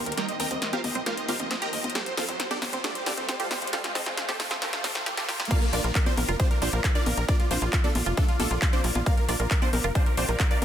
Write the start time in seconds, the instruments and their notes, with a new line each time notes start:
Already playing: riser
0.06 analog synth bass D#2, supersaw synth A#4, closed hi-hat
0.12 closed hi-hat
0.17 synth arpeggio sound G3, analog synth pad A#3 D#4 G4 C5, supersaw synth A#4 D#5 G5 A#5, snare, closed hi-hat
0.29 supersaw synth D#5, closed hi-hat
0.40 analog synth bass D#2, synth arpeggio sound C4, supersaw synth A#4 D#5 G5 A#5, open hi-hat
0.51 analog synth bass D#2, analog synth pad A#3 D#4 G4 C5, synth arpeggio sound C4, supersaw synth D#5, closed hi-hat
0.62 supersaw synth D#5, snare, closed hi-hat
0.73 supersaw synth F4 A#4 C5 F5, synth arpeggio sound G4, closed hi-hat, high conga
0.84 analog synth bass D#2, analog synth pad A#3 D#4 G4 C5, supersaw synth D#5, open hi-hat, high conga
0.95 analog synth bass C2, synth arpeggio sound C4, supersaw synth D#5, closed hi-hat
1.06 synth arpeggio sound A#3, analog synth pad A#3 D#4 G4 C5, supersaw synth F4 A#4 C5 F5, snare, closed hi-hat
1.17 analog synth pad A#3 D#4 G4 C5, supersaw synth D#5, closed hi-hat
1.29 analog synth bass D#2, supersaw synth F4 A#4 C5 F5, synth arpeggio sound G4, open hi-hat, high conga
1.40 analog synth bass D#2, analog synth pad A#3 D#4 G4 C5, synth arpeggio sound C4, supersaw synth D#5, closed hi-hat
1.51 synth arpeggio sound C4, supersaw synth D#5, snare, closed hi-hat
1.62 analog synth pad A#3 D#4 G4 C5, synth arpeggio sound G4, supersaw synth A#4 D#5 G5 A#5, closed hi-hat
1.73 analog synth bass D#2, supersaw synth D#5, open hi-hat
1.84 analog synth bass D#2, supersaw synth D#5, closed hi-hat, high conga
1.90 closed hi-hat
1.95 synth arpeggio sound G3, analog synth pad A3 F4 G4 C5, supersaw synth G4 A4 C5 G5, snare, closed hi-hat
2.06 supersaw synth C5, closed hi-hat
2.17 analog synth bass F2, synth arpeggio sound C4, supersaw synth F4 A4 C5 F5, snare, open hi-hat
2.28 analog synth bass F2, analog synth pad A3 F4 G4 C5, synth arpeggio sound C4, supersaw synth C5, closed hi-hat
2.40 supersaw synth C5, snare, closed hi-hat
2.51 supersaw synth D4 G4 A4 D5, synth arpeggio sound G4, closed hi-hat, high conga
2.62 analog synth bass F2, analog synth pad A3 F4 G4 C5, supersaw synth C5, snare, open hi-hat, high conga
2.73 analog synth bass D#2, synth arpeggio sound C4, supersaw synth C5, closed hi-hat
2.84 synth arpeggio sound A3, analog synth pad A3 F4 G4 C5, supersaw synth D4 G4 A4 D5, snare, closed hi-hat
2.95 analog synth pad A3 F4 G4 C5, supersaw synth C5, closed hi-hat
3.06 analog synth bass F2, supersaw synth D4 G4 A4 D5, synth arpeggio sound G4, snare, open hi-hat
3.17 analog synth bass F2, analog synth pad A3 F4 G4 C5, synth arpeggio sound C4, supersaw synth C5, closed hi-hat
3.29 synth arpeggio sound C4, supersaw synth C5, snare, closed hi-hat
3.40 analog synth pad A3 F4 G4 C5, supersaw synth F4 A4 C5 F5, synth arpeggio sound G4, closed hi-hat
3.51 analog synth bass F2, supersaw synth C5, snare, open hi-hat, high conga
3.62 analog synth bass F2, supersaw synth C5, closed hi-hat
3.67 closed hi-hat
3.73 synth arpeggio sound G3, analog synth pad A3 F4 G4 C5, supersaw synth F4 A4 C5 F5, snare, closed hi-hat
3.84 supersaw synth F4, snare, closed hi-hat
3.95 analog synth bass F2, synth arpeggio sound C4, supersaw synth D#4 A4 C5 D#5, snare, open hi-hat
4.06 analog synth bass F2, analog synth pad A3 F4 G4 C5, synth arpeggio sound C4, supersaw synth F4, snare, closed hi-hat
4.17 supersaw synth F4, snare, closed hi-hat
4.28 supersaw synth C4 G4 A4 C5, synth arpeggio sound G4, snare, closed hi-hat, high conga
4.40 analog synth bass F2, analog synth pad A3 F4 G4 C5, supersaw synth F4, snare, open hi-hat, high conga
4.51 analog synth bass D#2, synth arpeggio sound C4, supersaw synth F4, snare, closed hi-hat
4.62 synth arpeggio sound A3, analog synth pad A3 F4 G4 C5, supersaw synth A#3 F4 G4 A#4, snare, closed hi-hat
4.73 analog synth pad A3 F4 G4 C5, supersaw synth F4, snare, closed hi-hat
4.84 analog synth bass F2, synth arpeggio sound G3, supersaw synth A3 C4 F4 A4, snare, open hi-hat, high conga
4.95 analog synth bass F2, analog synth pad A3 F4 G4 C5, synth arpeggio sound C4, supersaw synth F4, snare, closed hi-hat
5.06 supersaw synth F4, synth arpeggio sound G4, snare, closed hi-hat
5.17 analog synth pad A3 F4 G4 C5, supersaw synth A3 C4 F4 A4, synth arpeggio sound G4, snare, closed hi-hat
5.29 analog synth bass F2, supersaw synth F4, synth arpeggio sound G4, snare, open hi-hat
5.40 analog synth bass F2, supersaw synth F4, synth arpeggio sound G4, snare, closed hi-hat, high conga
5.45 closed hi-hat
5.51 synth arpeggio sound A#3, analog synth pad A#3 D4 F4 D5, supersaw synth F4 A#4 D5 F5, synth pluck F5, kick, closed hi-hat, crash
5.62 synth pluck A#4, supersaw synth A#4, closed hi-hat
5.73 analog synth bass A#1, supersaw synth D4 F4 A#4 D5, synth arpeggio sound F4, synth pluck D5, open hi-hat
5.84 analog synth bass A#1, analog synth pad A#3 D4 F4 D5, synth arpeggio sound F4, synth pluck A#4, supersaw synth A#4, closed hi-hat
5.95 synth pluck A#4, supersaw synth A#4, kick, clap, closed hi-hat
6.06 supersaw synth C4 D4 F4 C5, synth pluck C5, synth arpeggio sound D5, closed hi-hat, high conga
6.17 analog synth bass A#1, analog synth pad A#3 D4 F4 D5, synth pluck A#4, supersaw synth A#4, open hi-hat, high conga
6.28 analog synth bass F1, synth arpeggio sound F4, synth pluck A#4, supersaw synth A#4, closed hi-hat
6.40 analog synth pad A#3 D4 F4 D5, supersaw synth C4 D4 F4 C5, synth arpeggio sound D4, synth pluck C5, kick, closed hi-hat
6.51 analog synth pad A#3 D4 F4 D5, synth pluck A#4, supersaw synth A#4, closed hi-hat
6.62 analog synth bass A#1, supersaw synth C4 D4 F4 C5, synth pluck C5, synth arpeggio sound D5, open hi-hat
6.73 analog synth bass A#1, analog synth pad A#3 D4 F4 D5, synth arpeggio sound F4, synth pluck A#4, supersaw synth A#4, closed hi-hat
6.84 synth arpeggio sound F4, synth pluck A#4, supersaw synth A#4, kick, clap, closed hi-hat
6.95 analog synth pad A#3 D4 F4 D5, supersaw synth D4 F4 A#4 D5, synth pluck D5, synth arpeggio sound D5, closed hi-hat
7.06 analog synth bass A#1, supersaw synth A#4, synth pluck A#4, open hi-hat, high conga
7.17 analog synth bass A#1, supersaw synth A#4, synth pluck A#4, closed hi-hat
7.29 synth arpeggio sound A#3, analog synth pad A#3 D4 F4 D5, supersaw synth D4 F4 A#4 D5, synth pluck D5, kick, closed hi-hat
7.40 supersaw synth F4, synth pluck F4, closed hi-hat
7.51 analog synth bass A#1, supersaw synth C4 D4 F4 C5, synth arpeggio sound F4, synth pluck C5, open hi-hat
7.62 analog synth bass A#1, analog synth pad A#3 D4 F4 D5, synth arpeggio sound F4, supersaw synth F4, synth pluck F4, closed hi-hat
7.73 supersaw synth F4, synth pluck F4, kick, clap, closed hi-hat
7.84 supersaw synth A3 D4 F4 A4, synth pluck A4, synth arpeggio sound D5, closed hi-hat, high conga
7.95 analog synth bass A#1, analog synth pad A#3 D4 F4 D5, synth pluck F4, supersaw synth F4, open hi-hat, high conga
8.06 analog synth bass F1, synth arpeggio sound F4, synth pluck F4, supersaw synth F4, closed hi-hat
8.17 supersaw synth A3 D4 F4 A4, analog synth pad A#3 D4 F4 D5, synth arpeggio sound D4, synth pluck A4, kick, closed hi-hat
8.29 analog synth pad A#3 D4 F4 D5, synth pluck F4, supersaw synth F4, closed hi-hat
8.40 analog synth bass A#1, supersaw synth A3 D4 F4 A4, synth pluck A4, synth arpeggio sound D5, open hi-hat, high conga
8.51 analog synth bass A#1, analog synth pad A#3 D4 F4 D5, synth pluck F4, supersaw synth F4, synth arpeggio sound F4, closed hi-hat
8.62 synth arpeggio sound F4, synth pluck F4, supersaw synth F4, kick, clap, closed hi-hat
8.73 analog synth pad A#3 D4 F4 D5, supersaw synth C4 D4 F4 C5, synth pluck C5, synth arpeggio sound D5, closed hi-hat
8.84 analog synth bass A#1, synth pluck F4, supersaw synth F4, open hi-hat
8.95 analog synth bass A#1, synth pluck F4, supersaw synth F4, closed hi-hat, high conga
9.06 analog synth pad A#3 D4 F4 D5, synth arpeggio sound A#3, supersaw synth F4 A#4 D5 F5, synth pluck F5, kick, closed hi-hat
9.17 synth pluck A#4, supersaw synth A#4, closed hi-hat
9.29 analog synth bass A#1, supersaw synth D4 F4 A#4 D5, synth arpeggio sound F4, synth pluck D5, open hi-hat
9.40 analog synth bass A#1, analog synth pad A#3 D4 F4 D5, synth arpeggio sound F4, synth pluck A#4, supersaw synth A#4, closed hi-hat
9.51 synth pluck A#4, supersaw synth A#4, kick, clap, closed hi-hat
9.62 supersaw synth C4 D4 F4 C5, synth pluck C5, synth arpeggio sound D5, closed hi-hat, high conga
9.73 analog synth bass A#1, analog synth pad A#3 D4 F4 D5, synth pluck A#4, supersaw synth A#4, open hi-hat, high conga
9.84 analog synth bass F1, synth arpeggio sound F4, synth pluck A#4, supersaw synth A#4, closed hi-hat
9.95 analog synth pad A#3 D4 F4 D5, supersaw synth C4 D4 F4 C5, synth arpeggio sound D4, synth pluck C5, kick, closed hi-hat
10.06 analog synth pad A#3 D4 F4 D5, supersaw synth A#4, synth pluck A#4, closed hi-hat
10.17 analog synth bass A#1, supersaw synth C4 D4 F4 C5, synth pluck C5, synth arpeggio sound D5, open hi-hat
10.28 analog synth bass A#1, analog synth pad A#3 D4 F4 D5, synth arpeggio sound F4, synth pluck A#4, supersaw synth A#4, closed hi-hat
10.40 synth arpeggio sound F4, synth pluck A#4, supersaw synth A#4, kick, clap, closed hi-hat
10.51 analog synth pad A#3 D4 F4 D5, supersaw synth D4 F4 A#4 D5, synth pluck D5, synth arpeggio sound D5, closed hi-hat
10.62 synth pluck A#4